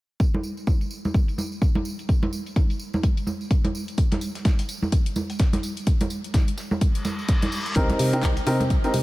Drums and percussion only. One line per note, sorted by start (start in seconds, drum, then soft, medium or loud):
0.20 kick loud
0.20 closed hi-hat medium
0.20 tambourine soft
0.34 closed hi-hat medium
0.34 high conga medium
0.43 tambourine medium
0.57 closed hi-hat soft
0.57 tambourine soft
0.67 kick loud
0.67 closed hi-hat medium
0.67 tambourine medium
0.67 high conga medium
0.81 closed hi-hat medium
0.81 tambourine soft
0.91 tambourine medium
1.05 tambourine soft
1.05 high conga medium
1.14 kick loud
1.14 closed hi-hat medium
1.14 tambourine medium
1.28 closed hi-hat medium
1.28 tambourine soft
1.38 tambourine medium
1.38 high conga medium
1.52 tambourine soft
1.62 kick loud
1.62 closed hi-hat medium
1.62 tambourine medium
1.75 closed hi-hat medium
1.75 high conga medium
1.85 tambourine medium
1.99 closed hi-hat soft
1.99 tambourine soft
2.09 kick loud
2.09 closed hi-hat medium
2.09 tambourine medium
2.23 closed hi-hat medium
2.23 high conga medium
2.33 tambourine loud
2.46 closed hi-hat soft
2.46 tambourine soft
2.56 kick loud
2.56 closed hi-hat medium
2.56 tambourine medium
2.56 high conga medium
2.70 closed hi-hat soft
2.70 tambourine soft
2.79 tambourine medium
2.93 tambourine soft
2.93 high conga medium
3.03 kick loud
3.03 closed hi-hat medium
3.03 tambourine soft
3.17 closed hi-hat medium
3.17 tambourine soft
3.27 tambourine medium
3.27 high conga medium
3.41 tambourine soft
3.51 kick loud
3.51 closed hi-hat medium
3.51 tambourine medium
3.64 closed hi-hat medium
3.64 high conga medium
3.75 tambourine loud
3.88 closed hi-hat soft
3.88 tambourine soft
3.98 kick loud
3.98 closed hi-hat medium
3.98 tambourine medium
4.12 snare soft
4.12 closed hi-hat medium
4.12 high conga loud
4.21 tambourine medium
4.35 snare soft
4.35 closed hi-hat soft
4.35 tambourine soft
4.45 kick loud
4.45 snare loud
4.45 closed hi-hat medium
4.45 tambourine medium
4.45 high conga medium
4.59 closed hi-hat soft
4.59 tambourine soft
4.69 tambourine medium
4.82 tambourine soft
4.82 high conga medium
4.92 kick loud
4.92 closed hi-hat medium
4.92 tambourine medium
5.06 closed hi-hat medium
5.06 tambourine soft
5.16 tambourine loud
5.16 tambourine medium
5.16 high conga medium
5.30 closed hi-hat soft
5.30 tambourine soft
5.39 kick loud
5.39 snare loud
5.39 closed hi-hat medium
5.39 tambourine medium
5.53 snare soft
5.53 closed hi-hat medium
5.53 high conga loud
5.63 tambourine medium
5.63 tambourine loud
5.77 closed hi-hat soft
5.77 tambourine soft
5.87 kick loud
5.87 closed hi-hat medium
5.87 tambourine medium
6.01 closed hi-hat medium
6.01 tambourine soft
6.01 high conga medium
6.10 tambourine medium
6.24 closed hi-hat soft
6.24 tambourine soft
6.34 kick loud
6.34 snare loud
6.34 closed hi-hat medium
6.34 tambourine medium
6.34 high conga medium
6.48 closed hi-hat soft
6.48 tambourine soft
6.58 snare soft
6.58 tambourine medium
6.71 tambourine soft
6.71 high conga medium
6.81 kick loud
6.81 closed hi-hat medium
6.81 tambourine soft
6.81 tambourine medium
6.95 closed hi-hat medium
6.95 tambourine soft
7.05 snare medium
7.05 tambourine medium
7.05 high conga medium
7.19 tambourine soft
7.28 kick loud
7.28 snare loud
7.28 closed hi-hat medium
7.28 tambourine medium
7.42 snare medium
7.42 closed hi-hat soft
7.42 tambourine soft
7.42 high conga medium
7.52 tambourine medium
7.66 closed hi-hat soft
7.66 tambourine soft
7.76 kick loud
7.76 closed hi-hat medium
7.76 tambourine medium
7.89 snare soft
7.89 closed hi-hat soft
7.89 tambourine soft
7.89 high conga loud
7.99 open hi-hat loud
7.99 tambourine medium
8.13 snare soft
8.13 closed hi-hat medium
8.13 tambourine soft
8.23 kick loud
8.23 snare loud
8.23 clap loud
8.23 closed hi-hat medium
8.23 tambourine medium
8.23 high conga medium
8.37 closed hi-hat soft
8.37 tambourine soft
8.46 open hi-hat medium
8.46 tambourine medium
8.60 closed hi-hat medium
8.60 tambourine soft
8.60 high conga loud
8.70 kick loud
8.70 closed hi-hat medium
8.70 tambourine medium
8.70 tambourine soft
8.84 closed hi-hat soft
8.84 tambourine soft
8.94 open hi-hat loud
8.94 tambourine medium
8.94 high conga medium